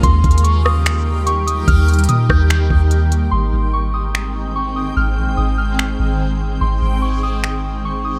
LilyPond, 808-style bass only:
\new Staff \with { instrumentName = "808-style bass" } { \clef bass \time 4/4 \key aes \major \tempo 4 = 146 ees,8 ees,2.~ ees,8 | ees,4 bes,8 ees,4 ees,4. | aes,,8 aes,,2.~ aes,,8 | aes,,8 bes,,16 aes,,16 aes,,4. aes,,4. |
aes,,8 aes,,2.~ aes,,8 | }